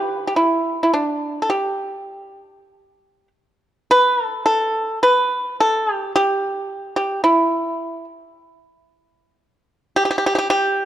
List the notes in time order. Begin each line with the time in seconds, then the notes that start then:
Already playing: D3 G4
0.27 G4
0.36 E4
0.83 E4
0.93 D4
1.42 A4
1.50 G4
3.91 B4
4.24 A4
4.46 A4
5.03 B4
5.60 A4
5.93 G4
6.16 G4
6.96 G4
7.24 E4
9.96 G4
10.05 G4
10.11 G4
10.18 G4
10.26 G4
10.35 G4
10.50 G4